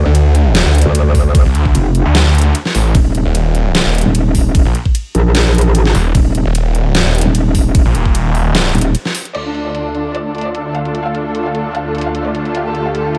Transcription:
0.05 0.64 D2 loud
0.15 closed hi-hat medium
0.15 ride soft
0.35 closed hi-hat medium
0.55 snare loud
0.55 closed hi-hat medium
0.55 ride medium
0.65 0.84 D2 loud
0.75 closed hi-hat medium
0.78 closed hi-hat medium
0.81 closed hi-hat medium
0.85 1.44 D2 loud
0.95 closed hi-hat medium
0.95 ride soft
1.15 kick medium
1.15 open hi-hat medium
1.35 kick loud
1.35 closed hi-hat medium
1.35 ride medium
1.45 1.53 C2 medium
1.55 1.73 D2 loud
1.55 closed hi-hat medium
1.65 kick medium
1.75 2.04 F1 medium
1.75 closed hi-hat medium
1.75 ride soft
1.95 closed hi-hat medium
2.05 2.24 D2 loud
2.15 snare loud
2.15 closed hi-hat medium
2.15 ride medium
2.25 2.53 D2 medium
2.35 closed hi-hat soft
2.38 closed hi-hat medium
2.42 closed hi-hat medium
2.55 closed hi-hat medium
2.55 ride soft
2.65 snare soft
2.75 2.93 A1 medium
2.75 open hi-hat medium
2.95 3.24 D#1 loud
2.95 kick loud
2.95 closed hi-hat medium
2.95 ride medium
3.15 closed hi-hat soft
3.25 3.84 D#1 loud
3.35 closed hi-hat medium
3.35 ride soft
3.55 closed hi-hat medium
3.75 snare loud
3.75 closed hi-hat medium
3.75 ride medium
3.85 4.04 D#1 medium
3.95 closed hi-hat soft
3.98 closed hi-hat medium
4.01 closed hi-hat medium
4.06 4.64 D#1 medium
4.15 closed hi-hat medium
4.15 ride soft
4.35 kick medium
4.35 open hi-hat medium
4.55 kick loud
4.55 closed hi-hat medium
4.55 ride medium
4.65 4.73 A#1 loud
4.75 closed hi-hat medium
4.86 kick medium
4.95 closed hi-hat medium
4.95 ride soft
5.15 5.70 A#1 loud
5.15 closed hi-hat medium
5.35 snare loud
5.35 closed hi-hat medium
5.35 ride medium
5.55 closed hi-hat soft
5.58 closed hi-hat medium
5.61 closed hi-hat medium
5.70 5.93 A1 loud
5.75 closed hi-hat medium
5.75 ride soft
5.86 snare soft
5.95 6.13 D#1 loud
5.95 open hi-hat loud
6.15 6.44 D#1 loud
6.15 kick loud
6.15 closed hi-hat medium
6.15 ride medium
6.35 closed hi-hat medium
6.46 7.04 D#1 loud
6.55 closed hi-hat medium
6.55 ride soft
6.75 closed hi-hat medium
6.95 snare loud
6.95 closed hi-hat medium
6.95 ride medium
7.05 7.24 D#1 medium
7.15 closed hi-hat soft
7.18 closed hi-hat medium
7.21 closed hi-hat medium
7.25 7.84 D#1 loud
7.35 closed hi-hat medium
7.35 ride medium
7.55 kick medium
7.55 open hi-hat loud
7.75 kick loud
7.75 closed hi-hat medium
7.75 ride medium
7.86 7.93 A#1 loud
7.95 8.73 D#1 medium
7.95 closed hi-hat medium
8.06 kick medium
8.15 closed hi-hat medium
8.15 ride soft
8.35 open hi-hat medium
8.55 snare loud
8.55 closed hi-hat medium
8.55 ride medium
8.75 8.95 D#1 loud
8.75 closed hi-hat medium
8.78 closed hi-hat medium
8.81 closed hi-hat medium
8.95 closed hi-hat medium
8.95 ride soft
9.05 snare soft
9.15 open hi-hat loud
9.25 closed hi-hat soft
9.35 13.18 D2 medium
9.35 13.18 D3 medium
9.35 13.18 A3 medium
9.35 13.18 F4 medium
9.35 12.52 A4 medium
9.35 9.42 D5 medium
9.35 closed hi-hat medium
9.35 crash medium
9.46 9.51 D4 medium
9.55 9.62 D4 medium
9.55 closed hi-hat soft
9.65 9.71 D5 medium
9.75 9.82 D4 medium
9.75 closed hi-hat medium
9.95 10.01 D4 medium
9.95 closed hi-hat soft
10.05 10.11 D4 medium
10.15 10.21 D5 medium
10.15 closed hi-hat medium
10.26 10.31 D4 medium
10.35 10.42 D4 medium
10.35 closed hi-hat soft
10.38 closed hi-hat medium
10.41 closed hi-hat medium
10.46 10.51 D5 medium
10.55 10.62 D4 medium
10.55 closed hi-hat medium
10.66 10.71 D4 medium
10.75 10.82 F5 medium
10.75 closed hi-hat medium
10.85 10.91 D4 medium
10.85 closed hi-hat soft
10.95 11.02 D4 medium
10.95 closed hi-hat medium
11.06 11.11 F5 medium
11.15 11.22 D4 medium
11.15 closed hi-hat soft
11.25 11.31 D4 medium
11.35 11.42 D4 medium
11.35 closed hi-hat medium
11.46 11.51 F5 medium
11.55 11.62 D4 medium
11.55 closed hi-hat soft
11.66 11.71 D4 medium
11.75 11.82 F5 medium
11.75 closed hi-hat medium
11.86 11.91 D4 medium
11.95 12.02 D4 medium
11.95 closed hi-hat soft
11.98 closed hi-hat medium
12.01 closed hi-hat medium
12.06 12.11 F5 medium
12.15 12.22 D4 medium
12.15 closed hi-hat medium
12.26 12.31 D5 medium
12.35 12.42 D4 medium
12.35 closed hi-hat medium
12.45 12.51 D4 medium
12.45 closed hi-hat soft
12.55 13.18 G4 medium
12.55 12.62 F5 medium
12.55 closed hi-hat medium
12.66 12.71 A4 medium
12.75 12.82 A4 medium
12.75 closed hi-hat soft
12.86 12.91 F5 medium
12.95 13.02 A4 medium
12.95 closed hi-hat medium
13.15 13.18 A4 medium
13.15 closed hi-hat soft

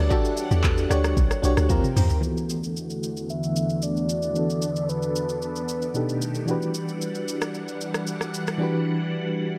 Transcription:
0.00 1.66 E3 medium
0.00 1.66 G3 medium
0.00 0.10 D4 medium
0.00 1.66 D4 medium
0.00 0.11 F#4 medium
0.00 0.11 G4 medium
0.00 1.72 B4 loud
0.00 0.92 C#5 medium
0.00 0.38 D5 medium
0.00 1.66 F#5 medium
0.10 0.74 D4 loud
0.10 0.48 F#4 loud
0.10 0.75 F#4 medium
0.10 0.48 G4 medium
0.10 0.75 G4 medium
0.10 0.76 A4 loud
0.10 0.48 D5 loud
0.10 kick loud
0.10 shaker medium
0.25 shaker medium
0.37 shaker loud
0.51 0.86 E2 loud
0.51 0.87 F#4 medium
0.51 0.87 G4 medium
0.51 0.88 D5 medium
0.51 shaker medium
0.64 kick loud
0.64 clap loud
0.64 shaker medium
0.78 shaker soft
0.89 1.14 D2 medium
0.89 1.33 D4 medium
0.89 1.33 F#4 medium
0.89 1.15 F#4 medium
0.89 1.15 G4 medium
0.89 1.34 G4 medium
0.89 1.34 C#5 loud
0.89 1.15 D5 medium
0.89 cross-stick medium
0.89 shaker loud
1.04 cross-stick loud
1.04 shaker medium
1.17 1.29 B1 loud
1.17 kick loud
1.17 shaker medium
1.31 cross-stick medium
1.31 shaker medium
1.42 1.56 B1 medium
1.42 1.69 D4 medium
1.42 1.70 F#4 medium
1.42 1.70 G4 medium
1.42 1.71 C#5 loud
1.42 shaker loud
1.57 1.69 D2 medium
1.57 cross-stick loud
1.57 shaker medium
1.69 1.82 D#2 loud
1.69 2.23 D#3 medium
1.69 2.23 A#3 medium
1.69 2.12 C4 loud
1.69 2.23 C4 medium
1.69 2.13 F4 medium
1.69 2.23 G4 medium
1.69 2.13 G4 medium
1.69 2.14 A#4 loud
1.69 2.20 A#5 medium
1.69 kick medium
1.69 high tom medium
1.69 shaker medium
1.84 mid tom medium
1.84 shaker medium
1.96 2.09 E2 loud
1.96 2.05 D#4 medium
1.96 2.05 G4 medium
1.96 2.06 C5 medium
1.96 mid tom medium
1.96 open hi-hat medium
1.96 shaker loud
2.10 floor tom loud
2.10 shaker medium
2.21 5.91 E2 medium
2.21 5.91 D3 medium
2.21 4.30 E3 medium
2.21 4.33 A3 medium
2.21 4.31 B3 medium
2.21 6.44 B3 medium
2.21 4.32 E4 medium
2.21 4.33 F#4 medium
2.21 shaker medium
2.25 4.32 F#4 medium
2.25 4.33 A4 medium
2.37 shaker soft
2.49 shaker medium
2.64 shaker medium
2.77 shaker medium
2.90 shaker soft
3.03 shaker medium
3.17 shaker soft
3.30 3.84 E5 loud
3.30 shaker medium
3.43 shaker medium
3.56 shaker medium
3.70 shaker soft
3.82 4.90 D5 loud
3.82 shaker medium
3.97 shaker soft
4.09 shaker loud
4.22 shaker soft
4.33 5.90 E3 medium
4.33 5.91 B3 medium
4.33 5.93 D4 medium
4.33 5.92 D4 medium
4.33 5.93 A4 medium
4.33 shaker medium
4.37 5.92 F#4 medium
4.37 5.93 A4 medium
4.50 shaker medium
4.62 shaker medium
4.76 shaker medium
4.89 5.41 B4 medium
4.89 shaker medium
5.02 shaker soft
5.16 shaker medium
5.29 shaker soft
5.42 6.18 B4 medium
5.42 shaker medium
5.56 shaker medium
5.68 shaker medium
5.82 shaker soft
5.94 6.47 B2 medium
5.94 6.47 D#3 medium
5.94 6.47 A3 medium
5.94 6.46 D4 medium
5.94 6.48 D#4 medium
5.94 6.47 G4 medium
5.94 6.48 G4 medium
5.94 6.49 A4 medium
5.94 shaker medium
6.09 shaker soft
6.22 shaker loud
6.35 shaker soft
6.46 8.55 E3 medium
6.46 9.58 E3 medium
6.46 9.58 G3 medium
6.46 8.56 D4 medium
6.46 9.58 D4 medium
6.46 8.56 F#4 medium
6.46 9.58 F#5 medium
6.46 shaker medium
6.50 8.57 G4 medium
6.50 8.58 B4 medium
6.62 shaker medium
6.74 shaker loud
6.88 shaker medium
7.01 shaker medium
7.15 shaker soft
7.28 shaker medium
7.41 cross-stick loud
7.41 shaker medium
7.54 shaker medium
7.68 shaker medium
7.81 shaker medium
7.94 cross-stick loud
7.94 shaker soft
8.07 shaker medium
8.21 cross-stick medium
8.21 shaker soft
8.34 shaker loud
8.47 cross-stick medium
8.47 shaker soft
8.58 9.58 E3 medium
8.58 9.58 D4 medium
8.58 9.58 F#4 medium
8.62 9.58 G4 medium
8.62 9.58 B4 medium

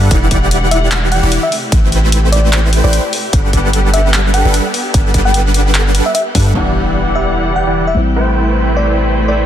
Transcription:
0.11 1.21 E1 loud
0.11 1.51 D3 medium
0.11 1.20 E3 medium
0.11 1.51 G3 medium
0.11 1.20 E4 medium
0.11 1.20 G4 medium
0.11 1.20 D5 medium
0.11 1.20 F#5 medium
0.11 1.51 F#5 medium
0.11 kick loud
0.11 closed hi-hat medium
0.11 ride medium
0.31 kick medium
0.31 closed hi-hat medium
0.51 closed hi-hat medium
0.71 0.88 E5 medium
0.71 closed hi-hat medium
0.91 clap loud
0.91 closed hi-hat medium
0.91 ride soft
1.12 1.29 G5 loud
1.12 closed hi-hat medium
1.23 1.38 E1 loud
1.23 1.40 E3 loud
1.23 1.40 E4 medium
1.23 1.40 G4 medium
1.23 1.40 D5 medium
1.23 1.40 F#5 loud
1.32 closed hi-hat medium
1.43 1.56 E5 loud
1.52 3.31 C3 medium
1.52 3.31 A3 medium
1.52 6.51 G4 medium
1.52 open hi-hat medium
1.72 2.82 A1 loud
1.72 2.81 A3 medium
1.72 2.81 E4 medium
1.72 2.81 B4 medium
1.72 2.81 C5 medium
1.72 2.81 G5 medium
1.72 kick loud
1.72 closed hi-hat medium
1.72 ride medium
1.92 closed hi-hat medium
2.12 closed hi-hat medium
2.32 2.64 D5 medium
2.32 closed hi-hat medium
2.53 clap loud
2.53 closed hi-hat medium
2.53 ride soft
2.73 closed hi-hat medium
2.84 2.99 A1 loud
2.84 3.02 A3 medium
2.84 3.02 E4 medium
2.84 3.02 B4 medium
2.84 3.02 C5 medium
2.84 3.13 D5 medium
2.84 3.02 G5 loud
2.93 closed hi-hat medium
3.13 open hi-hat medium
3.33 4.43 G1 loud
3.33 4.42 G3 medium
3.33 6.52 B3 medium
3.33 4.42 D4 medium
3.33 4.42 A4 medium
3.33 4.42 B4 medium
3.33 4.42 F#5 medium
3.33 kick loud
3.33 closed hi-hat medium
3.33 ride medium
3.53 kick medium
3.53 closed hi-hat medium
3.73 closed hi-hat medium
3.93 4.11 E5 medium
3.93 closed hi-hat medium
4.14 clap loud
4.14 closed hi-hat medium
4.14 ride soft
4.34 4.51 G5 loud
4.34 closed hi-hat medium
4.45 4.60 G1 loud
4.45 4.63 G3 medium
4.45 4.63 D4 medium
4.45 4.63 A4 medium
4.45 4.63 B4 medium
4.45 4.63 F#5 loud
4.54 closed hi-hat medium
4.74 open hi-hat medium
4.94 6.01 G1 medium
4.94 6.04 G3 medium
4.94 6.04 D4 medium
4.94 6.03 A4 medium
4.94 6.04 B4 medium
4.94 6.04 F#5 medium
4.94 kick loud
4.94 closed hi-hat medium
4.94 ride soft
5.14 kick medium
5.14 closed hi-hat medium
5.25 5.42 G5 medium
5.34 closed hi-hat medium
5.54 closed hi-hat medium
5.75 clap loud
5.75 closed hi-hat medium
5.75 ride soft
5.95 closed hi-hat medium
6.06 6.12 E5 medium
6.15 6.22 E5 medium
6.15 closed hi-hat medium
6.35 6.53 G2 loud
6.35 6.53 G3 loud
6.35 6.53 D4 medium
6.35 6.53 A4 medium
6.35 6.53 B4 medium
6.35 6.53 F#5 loud
6.35 kick medium
6.35 open hi-hat medium
6.53 7.94 E1 medium
6.53 7.95 D3 medium
6.53 7.64 E3 medium
6.53 7.93 G3 medium
6.53 7.95 G3 medium
6.53 7.94 B3 medium
6.53 7.94 D4 medium
6.53 7.64 E4 medium
6.53 7.64 G4 medium
6.53 7.65 D5 medium
6.53 7.95 F#5 medium
6.53 7.64 F#5 medium
6.53 7.95 F#5 medium
6.53 crash medium
6.53 impact medium
7.15 7.33 E5 medium
7.56 7.73 G5 medium
7.67 7.85 E3 medium
7.67 7.85 E4 medium
7.67 7.85 G4 medium
7.67 7.85 D5 medium
7.67 7.85 F#5 loud
7.87 8.01 E5 medium
7.94 9.46 A1 medium
7.94 9.46 C3 medium
7.94 9.46 G3 medium
7.94 9.46 A3 medium
7.94 9.46 C4 medium
7.94 9.46 E4 medium
7.94 9.46 G4 medium
8.16 9.26 A3 medium
8.16 9.26 E4 medium
8.16 9.26 B4 medium
8.16 9.26 C5 medium
8.16 9.26 G5 medium
8.76 9.08 D5 medium
9.28 9.46 A3 medium
9.28 9.46 E4 medium
9.28 9.46 B4 medium
9.28 9.46 C5 medium
9.28 9.46 D5 medium
9.28 9.46 G5 medium

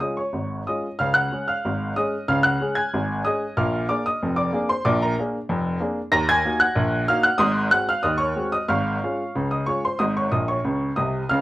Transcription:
0.00 0.19 G#3 soft
0.00 0.19 C#4 soft
0.00 0.19 F4 soft
0.00 0.17 D#5 soft
0.00 0.17 D#6 medium
0.17 0.64 C#5 soft
0.17 0.56 C#6 medium
0.33 0.61 G#1 soft
0.33 0.62 G#2 soft
0.67 0.86 G#3 soft
0.67 0.86 C#4 soft
0.67 0.86 F4 soft
0.67 0.98 D#5 medium
0.67 0.98 D#6 medium
0.99 1.27 C#2 medium
0.99 1.27 C#3 medium
0.99 1.15 F5 medium
0.99 1.15 F6 medium
1.14 1.45 F#5 medium
1.14 1.40 F#6 medium
1.32 1.50 G#3 soft
1.32 1.50 C#4 soft
1.32 1.50 G#4 soft
1.48 1.93 F5 medium
1.48 1.86 F6 medium
1.65 1.92 G#1 medium
1.65 1.92 G#2 medium
1.96 2.14 G#3 soft
1.96 2.15 C#4 medium
1.96 2.15 G#4 soft
1.96 2.27 D#5 medium
1.96 2.22 D#6 medium
2.28 2.56 C#2 medium
2.28 2.56 C#3 medium
2.28 2.44 F5 medium
2.28 2.45 F6 medium
2.43 2.75 F#5 medium
2.43 2.74 F#6 medium
2.61 2.78 G#3 soft
2.61 2.79 C#4 soft
2.61 2.79 G#4 medium
2.75 3.22 G#5 medium
2.75 3.22 G#6 medium
2.94 3.21 G#1 medium
2.94 3.21 G#2 medium
3.25 3.43 G#3 soft
3.25 3.43 C#4 soft
3.25 3.44 G#4 soft
3.25 3.56 D#5 medium
3.25 3.51 D#6 medium
3.57 3.85 A#1 medium
3.57 3.84 A#2 medium
3.57 3.87 F5 medium
3.57 3.87 D6 medium
3.57 3.83 F6 medium
3.89 4.07 A#3 medium
3.89 4.07 D4 soft
3.89 4.07 G#4 soft
3.89 4.05 D5 medium
3.89 4.05 D6 medium
4.06 4.36 D#5 medium
4.06 4.36 D#6 medium
4.22 4.49 F1 medium
4.22 4.49 F2 medium
4.36 4.68 D5 medium
4.36 4.67 D6 medium
4.53 4.71 A#3 medium
4.53 4.72 D4 soft
4.53 4.71 G#4 medium
4.69 4.85 C5 medium
4.69 4.85 C6 medium
4.85 5.13 A#1 medium
4.85 5.13 A#2 medium
4.85 5.01 D5 medium
4.85 5.01 D6 medium
5.02 5.17 A#4 medium
5.02 5.18 A#5 medium
5.19 5.36 A#3 soft
5.19 5.36 D4 soft
5.19 5.37 G#4 medium
5.49 5.77 F1 medium
5.49 5.77 F2 medium
5.80 5.98 A#3 medium
5.80 5.98 D4 medium
5.80 5.99 G#4 medium
6.12 6.40 D#2 medium
6.12 6.40 D#3 medium
6.12 6.28 A#5 medium
6.12 6.29 A#6 loud
6.29 6.60 G#5 medium
6.29 6.55 G#6 loud
6.45 6.63 A#3 medium
6.45 6.63 D#4 medium
6.45 6.63 F#4 medium
6.60 7.06 F#5 medium
6.60 7.06 F#6 loud
6.75 7.04 A#1 medium
6.75 7.04 A#2 medium
7.08 7.27 A#3 medium
7.08 7.27 D#4 medium
7.08 7.27 F#4 medium
7.08 7.25 F5 medium
7.08 7.25 F6 loud
7.23 7.40 F#5 medium
7.23 7.41 F#6 medium
7.38 7.67 G#1 medium
7.38 7.67 G#2 medium
7.38 7.71 D#5 medium
7.38 7.70 C6 medium
7.38 7.70 D#6 loud
7.71 7.89 G#3 medium
7.71 7.90 C4 soft
7.71 7.90 F#4 medium
7.71 7.88 F#5 medium
7.71 7.89 F#6 loud
7.89 8.05 F5 medium
7.89 8.05 F6 loud
8.03 8.32 D#2 medium
8.03 8.32 D#3 medium
8.03 8.20 D#5 medium
8.03 8.21 D#6 medium
8.18 8.51 C#5 medium
8.18 8.45 C#6 medium
8.36 8.54 G#3 soft
8.36 8.55 C4 soft
8.36 8.55 F#4 medium
8.52 8.69 D#5 medium
8.52 8.70 D#6 medium
8.68 8.97 G#1 medium
8.68 8.97 G#2 medium
8.68 9.47 F5 medium
8.68 9.47 C#6 medium
8.68 9.34 F6 medium
9.04 9.21 G#3 soft
9.04 9.22 C#4 soft
9.04 9.22 F4 soft
9.35 9.63 C#2 medium
9.35 9.63 C#3 medium
9.51 9.67 D#5 medium
9.51 9.68 D#6 medium
9.66 9.86 G#3 soft
9.66 9.86 C#4 soft
9.66 9.86 F4 soft
9.66 9.83 C#5 medium
9.66 9.84 C#6 medium
9.85 10.00 C5 soft
9.85 10.01 C6 medium
9.99 10.28 G#1 medium
9.99 10.28 G#2 medium
9.99 10.16 D#5 medium
9.99 10.16 D#6 medium
10.17 10.32 C#5 medium
10.17 10.33 C#6 medium
10.32 10.57 A#1 medium
10.32 10.57 A#2 medium
10.32 10.48 D#5 medium
10.32 10.49 D#6 medium
10.48 10.95 C#5 medium
10.48 10.88 C#6 medium
10.65 10.89 C#2 medium
10.65 10.89 C#3 medium
10.96 11.22 C2 medium
10.96 11.22 C3 medium
10.96 11.28 D#5 medium
10.96 11.28 D#6 medium
11.29 11.41 C#2 medium
11.29 11.41 C#3 medium
11.29 11.41 F5 medium
11.29 11.41 F6 medium

